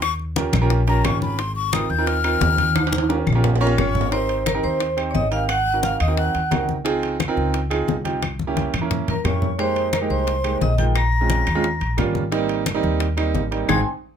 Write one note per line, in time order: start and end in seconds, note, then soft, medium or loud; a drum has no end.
0.00 0.47 D#2 medium
0.00 0.12 C#6 loud
0.00 high bongo medium
0.00 high conga soft
0.00 high timbale medium
0.00 claves medium
0.19 high conga soft
0.36 0.54 C#4 medium
0.36 0.54 F4 medium
0.36 0.54 G4 medium
0.36 0.54 A#4 medium
0.36 high bongo medium
0.36 high conga loud
0.36 high timbale medium
0.36 low timbale medium
0.53 1.01 A#1 loud
0.53 high conga loud
0.53 low conga medium
0.53 high timbale medium
0.53 claves medium
0.61 0.80 C#4 medium
0.61 0.80 F4 medium
0.61 0.80 G4 medium
0.61 0.80 A#4 loud
0.70 high bongo medium
0.70 high conga soft
0.87 1.35 C#4 medium
0.87 1.35 F4 medium
0.87 1.36 G4 medium
0.87 1.35 A#4 medium
0.87 1.07 A#5 loud
0.87 high bongo soft
0.87 high conga soft
0.87 high timbale medium
1.04 1.84 G#1 medium
1.04 1.21 C#6 medium
1.04 high bongo medium
1.04 low bongo medium
1.04 high conga medium
1.04 high timbale medium
1.04 low timbale medium
1.04 claves medium
1.22 1.41 B5 medium
1.22 high bongo soft
1.22 high conga medium
1.39 1.55 C6 medium
1.39 high bongo medium
1.39 high conga soft
1.39 high timbale medium
1.56 1.74 C#6 loud
1.56 high conga soft
1.73 1.91 C4 medium
1.73 1.91 D#4 medium
1.73 1.91 F4 medium
1.73 1.91 A#4 medium
1.73 1.92 D#6 medium
1.73 high bongo medium
1.73 high conga medium
1.73 high timbale medium
1.73 low timbale medium
1.73 claves medium
1.90 2.38 D#2 medium
1.90 2.08 G6 loud
1.90 high conga soft
1.98 2.16 C4 medium
1.98 2.16 D#4 medium
1.98 2.17 F4 medium
1.98 2.17 A#4 medium
2.07 3.09 F6 loud
2.07 high bongo medium
2.07 high conga soft
2.07 high timbale medium
2.24 2.72 C4 medium
2.24 2.72 D#4 medium
2.24 2.72 F4 medium
2.24 2.72 A#4 medium
2.24 high conga soft
2.24 high timbale medium
2.24 claves medium
2.41 3.21 D#2 medium
2.41 high bongo medium
2.41 low bongo medium
2.41 high conga medium
2.41 low timbale medium
2.58 high conga medium
2.58 high timbale medium
2.76 high bongo medium
2.76 high conga medium
2.76 high timbale medium
2.76 claves medium
2.87 high timbale medium
2.93 high conga loud
2.98 high timbale medium
3.09 3.27 C#4 medium
3.09 3.27 F4 medium
3.09 3.27 G4 medium
3.09 3.27 A#4 medium
3.09 high bongo medium
3.09 high timbale medium
3.26 3.74 A#1 medium
3.26 high bongo soft
3.26 high conga loud
3.26 claves medium
3.33 3.53 C#4 medium
3.33 3.53 F4 medium
3.33 3.53 G4 medium
3.33 3.53 A#4 medium
3.33 low timbale medium
3.44 high bongo medium
3.44 low conga medium
3.44 low timbale loud
3.56 low timbale medium
3.61 4.09 C#4 loud
3.61 4.09 F4 loud
3.61 4.09 G4 medium
3.61 3.69 A#4 medium
3.61 4.09 C#5 loud
3.61 3.67 A#5 medium
3.61 high bongo soft
3.67 low timbale medium
3.78 4.58 G#1 medium
3.78 4.13 C#5 medium
3.78 4.10 C#6 medium
3.78 high bongo medium
3.78 low bongo medium
3.78 low conga medium
3.78 claves medium
3.95 high bongo soft
3.95 low conga medium
4.01 low timbale medium
4.11 4.42 C4 medium
4.11 4.42 D#4 medium
4.11 4.42 G4 medium
4.11 4.42 A#4 medium
4.11 4.48 C5 medium
4.11 4.44 C6 medium
4.11 high bongo medium
4.11 high conga soft
4.11 high timbale medium
4.29 high conga soft
4.29 high timbale medium
4.46 4.54 A#4 medium
4.46 4.52 A#5 medium
4.46 high bongo soft
4.46 high conga medium
4.46 high timbale medium
4.46 low timbale medium
4.46 claves medium
4.54 4.84 C4 medium
4.54 4.85 D#4 medium
4.54 4.85 G4 medium
4.54 4.85 A#4 medium
4.63 5.11 D#2 medium
4.63 4.96 C5 medium
4.63 4.95 C6 medium
4.63 high bongo soft
4.63 high conga soft
4.80 high bongo medium
4.80 high conga soft
4.80 high timbale medium
4.97 5.21 C4 medium
4.97 5.21 D#4 medium
4.97 5.21 G4 medium
4.97 5.21 C5 medium
4.97 high bongo soft
4.97 high conga soft
4.97 high timbale medium
4.97 claves medium
5.10 5.15 C#5 medium
5.10 5.14 C#6 medium
5.14 5.94 G#1 medium
5.14 5.32 D#5 loud
5.14 5.31 D#6 medium
5.14 high bongo soft
5.14 low bongo medium
5.14 high conga medium
5.14 low timbale medium
5.31 5.48 C4 medium
5.31 5.49 D#4 medium
5.31 5.49 G4 medium
5.31 5.49 A#4 medium
5.31 5.50 F5 medium
5.31 5.48 F6 medium
5.31 high bongo soft
5.31 high timbale medium
5.49 5.81 F#5 loud
5.49 5.81 F#6 medium
5.49 high bongo medium
5.49 high conga soft
5.49 high timbale medium
5.49 claves medium
5.66 high conga soft
5.74 5.98 C4 medium
5.74 5.98 D#4 medium
5.74 5.98 F#4 medium
5.74 5.98 A#4 medium
5.83 6.01 F5 medium
5.83 5.99 F6 medium
5.83 high bongo soft
5.83 high conga medium
5.83 high timbale medium
5.83 low timbale medium
6.00 6.32 D#2 medium
6.00 6.18 D#5 medium
6.00 6.17 D#6 medium
6.00 high bongo soft
6.00 high conga soft
6.00 high timbale medium
6.00 claves medium
6.08 6.38 C4 medium
6.08 6.38 D#4 medium
6.08 6.38 F#4 medium
6.08 6.38 A#4 medium
6.17 6.65 F#5 medium
6.17 6.65 F#6 medium
6.17 high bongo medium
6.17 high conga soft
6.34 6.50 D#2 medium
6.34 high bongo soft
6.34 high conga soft
6.34 high timbale medium
6.51 7.31 C#2 medium
6.51 6.75 C4 medium
6.51 6.75 D#4 medium
6.51 6.75 F#4 medium
6.51 6.75 A#4 medium
6.51 high bongo soft
6.51 low bongo medium
6.51 high conga medium
6.51 high timbale medium
6.51 low timbale medium
6.51 claves medium
6.69 high bongo soft
6.69 high conga medium
6.85 7.15 C4 loud
6.85 7.15 D#4 medium
6.85 7.15 F4 medium
6.85 7.15 G#4 loud
6.85 high bongo medium
6.85 high conga soft
6.85 high timbale medium
7.03 high conga soft
7.03 high timbale medium
7.20 high bongo medium
7.20 high conga medium
7.20 high timbale medium
7.20 low timbale medium
7.20 claves medium
7.28 7.58 C4 loud
7.28 7.58 D#4 medium
7.28 7.58 F4 medium
7.28 7.58 A#4 medium
7.36 7.84 C#2 medium
7.36 high bongo soft
7.36 high conga soft
7.54 high bongo medium
7.54 high conga soft
7.54 high timbale medium
7.70 7.95 C4 medium
7.70 7.95 D#4 medium
7.70 7.95 F4 medium
7.70 7.95 G#4 loud
7.70 high bongo soft
7.70 high conga soft
7.70 high timbale medium
7.70 claves medium
7.88 8.68 C2 medium
7.88 high bongo soft
7.88 low bongo medium
7.88 high conga medium
7.88 low timbale medium
8.04 8.22 C4 medium
8.04 8.22 D#4 medium
8.04 8.22 F4 medium
8.04 8.22 G4 medium
8.04 high bongo soft
8.04 high conga medium
8.04 high timbale medium
8.22 high bongo medium
8.22 high conga medium
8.22 high timbale medium
8.22 claves medium
8.39 high conga medium
8.47 8.71 A#3 medium
8.47 8.72 C#4 medium
8.47 8.72 E4 medium
8.47 8.72 G4 medium
8.57 high bongo soft
8.57 high conga medium
8.57 high timbale medium
8.57 low timbale medium
8.74 9.05 E2 medium
8.74 high bongo soft
8.74 low conga medium
8.74 high timbale medium
8.74 claves medium
8.81 9.12 A#3 medium
8.81 9.12 C#4 medium
8.81 9.12 E4 medium
8.81 9.12 A#4 medium
8.91 high bongo medium
8.91 low conga medium
9.08 9.24 E2 medium
9.08 9.25 A#4 medium
9.08 9.24 A#5 medium
9.08 high bongo soft
9.08 low conga medium
9.08 high timbale medium
9.24 10.04 F2 medium
9.24 9.49 A#3 medium
9.24 9.49 C#4 medium
9.24 9.49 E4 medium
9.24 9.49 G4 medium
9.24 9.61 C#5 medium
9.24 9.57 C#6 medium
9.24 high bongo soft
9.24 low bongo medium
9.24 low conga medium
9.24 high timbale medium
9.24 low timbale medium
9.24 claves medium
9.42 high bongo soft
9.42 low conga medium
9.58 9.89 G#3 medium
9.58 9.89 A#3 medium
9.58 9.89 D#4 medium
9.58 9.89 G4 medium
9.58 9.95 C5 medium
9.58 9.91 C6 medium
9.58 high bongo medium
9.58 high conga soft
9.58 high timbale medium
9.76 high conga soft
9.76 high timbale medium
9.93 10.02 A#4 medium
9.93 9.99 A#5 medium
9.93 high bongo medium
9.93 high conga medium
9.93 high timbale medium
9.93 low timbale medium
9.93 claves medium
10.01 10.31 G#3 medium
10.01 10.32 A#3 medium
10.01 10.32 D#4 medium
10.01 10.32 G4 medium
10.10 10.58 C2 medium
10.10 10.63 C5 medium
10.10 10.58 C6 medium
10.10 high bongo soft
10.10 high conga soft
10.27 high bongo medium
10.27 high conga soft
10.27 high timbale medium
10.44 10.68 G#3 medium
10.44 10.68 A#3 medium
10.44 10.68 D#4 medium
10.44 10.68 G4 medium
10.44 high bongo soft
10.44 high conga soft
10.44 high timbale medium
10.44 claves medium
10.61 11.41 A#1 medium
10.61 10.78 D#5 medium
10.61 10.77 D#6 medium
10.61 high bongo soft
10.61 low bongo medium
10.61 high conga medium
10.61 low timbale medium
10.78 10.95 G#3 medium
10.78 10.95 A#3 medium
10.78 10.95 D#4 medium
10.78 10.96 F4 medium
10.78 10.87 G5 medium
10.78 10.85 G6 medium
10.78 high bongo soft
10.78 high conga medium
10.78 high timbale medium
10.95 11.95 A#5 medium
10.95 11.94 A#6 medium
10.95 high bongo medium
10.95 high conga soft
10.95 high timbale medium
10.95 claves medium
11.12 high conga soft
11.21 11.45 G#3 medium
11.21 11.45 C4 medium
11.21 11.45 C#4 medium
11.21 11.45 F4 medium
11.30 high bongo soft
11.30 high conga medium
11.30 high timbale medium
11.30 low timbale medium
11.47 11.79 D#2 medium
11.47 high bongo soft
11.47 high conga soft
11.47 high timbale medium
11.47 claves medium
11.55 11.64 G#3 medium
11.55 11.64 C4 medium
11.55 11.64 C#4 medium
11.55 11.64 F4 loud
11.64 high bongo medium
11.64 high conga soft
11.81 11.97 A#1 medium
11.81 high bongo soft
11.81 high conga soft
11.81 high timbale medium
11.97 12.78 G#1 medium
11.97 12.22 G3 medium
11.97 12.22 A#3 medium
11.97 12.22 C#4 medium
11.97 12.22 F4 medium
11.97 high bongo soft
11.97 low bongo medium
11.97 high conga medium
11.97 high timbale medium
11.97 low timbale medium
11.97 claves medium
12.15 high bongo soft
12.15 high conga medium
12.31 12.62 G3 loud
12.31 12.62 A#3 medium
12.31 12.62 C4 medium
12.31 12.62 D#4 loud
12.31 high bongo medium
12.31 high conga soft
12.31 high timbale medium
12.49 high conga soft
12.49 high timbale medium
12.66 high bongo soft
12.66 high conga medium
12.66 high timbale medium
12.66 low timbale medium
12.66 claves medium
12.74 13.05 G3 loud
12.74 13.04 A#3 medium
12.74 13.05 C4 medium
12.74 13.05 D#4 loud
12.83 13.31 D#2 medium
12.83 high bongo soft
12.83 high conga soft
13.00 high bongo medium
13.00 high conga soft
13.00 high timbale medium
13.17 13.41 G3 medium
13.17 13.41 A#3 medium
13.17 13.41 C4 medium
13.17 13.41 D#4 loud
13.17 high bongo soft
13.17 high conga soft
13.17 high timbale medium
13.17 claves medium
13.34 13.66 G#1 medium
13.34 high bongo soft
13.34 low bongo medium
13.34 high conga medium
13.34 low timbale medium
13.51 13.69 G3 medium
13.51 13.69 A#3 medium
13.51 13.67 C4 medium
13.51 13.67 D#4 medium
13.51 high bongo soft
13.51 high timbale medium
13.68 13.81 G#1 loud
13.68 13.79 G#3 medium
13.68 13.79 C4 medium
13.68 13.79 D#4 medium
13.68 13.80 G5 medium
13.68 13.80 G#5 medium
13.68 13.80 C6 medium
13.68 13.80 G#6 medium
13.68 low bongo medium
13.68 high conga medium
13.68 high timbale medium
13.68 claves loud